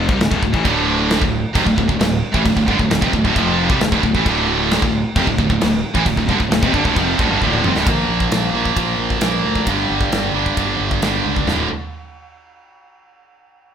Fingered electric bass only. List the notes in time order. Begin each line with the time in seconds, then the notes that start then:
0.09 C2
0.19 D1
0.31 D1
0.43 D1
0.54 A1
0.65 D1
1.22 D1
1.55 F1
1.66 D1
1.78 D1
1.89 D1
2.01 D1
2.34 A1
2.46 D1
2.56 D1
2.67 G1
2.79 D1
2.90 D1
3.01 F1
3.13 D1
3.25 D1
3.35 F1
3.70 C2
3.81 D1
3.92 D1
4.03 D1
4.15 A1
4.26 D1
4.82 D1
5.16 F1
5.27 D1
5.38 D1
5.50 D1
5.62 D1
5.94 A1
6.06 D1
6.17 D1
6.29 G1
6.40 D1
6.51 D1
6.62 F1
6.74 G1
6.85 D1
6.96 F1
7.18 D1
7.30 G1
7.42 D1
7.64 F1
7.75 D1
7.86 A#1
8.09 A#1
8.32 A#1
8.54 A#1
8.77 A#1
8.98 A#1
9.21 A#1
9.44 D2
9.66 G1
9.90 G1
10.12 G1
10.34 G1
10.57 G1
10.79 G1
11.02 G1
11.25 C#2
11.47 D1